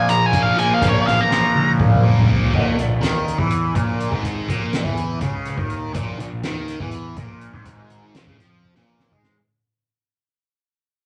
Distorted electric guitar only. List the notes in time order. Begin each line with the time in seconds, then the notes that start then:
Already playing: A#2 F3 A#3
0.32 F3 A#3
0.56 A#2 F3 A#3
0.82 A#2 F3 A#3
1.06 F3 A#3
1.30 A#2 F3 A#3
2.03 F3 A#3
2.27 A#2 F3 A#3
2.52 A#2
2.77 A#2
3.01 D#3
3.39 E3
3.75 A#2
4.12 G#2
4.49 A#2
4.85 E3
5.21 C#3
5.58 D#3
5.94 A#2
6.20 A#2
6.44 D#3
6.80 E3
7.18 A#2
7.53 G#2
7.65 G#2
8.15 A#2
8.27 C#3
8.38 F3
8.75 A#2
9.12 G#3